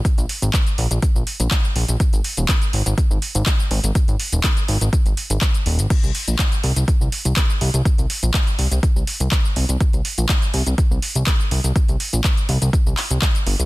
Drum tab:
CC |----------------|----------------|----------------|x---------------|
HH |xxoxxxoxx-oxx-ox|xxoxxxoxx-oxx-ox|xxoxxxoxxxoxxxox|xxoxxxoxx-oxx-ox|
SH |xx-xxx-xxx-xxx-x|xx-xxx-xxx-xxx-x|xx-xxx-xxx-xxx-x|xx-xxx-xxx-xxx-x|
CP |----x-------x---|----x-------x---|----x-------x---|----x-------x---|
BD |o---o---o---o---|o---o---o---o---|o---o---o---o---|o---o---o---o---|

CC |----------------|----------------|----------------|
HH |xxoxxxoxx-oxx-ox|xxoxxxoxx-oxx-ox|xxoxxxoxx-oxxxox|
SH |xx-xxx-xxx-xxx-x|xx-xxx-xxx-xxx-x|xx-xxx-xxx-xxx-x|
CP |----x-------x---|----x-------x---|----x-----x-x---|
BD |o---o---o---o---|o---o---o---o---|o---o---o---o---|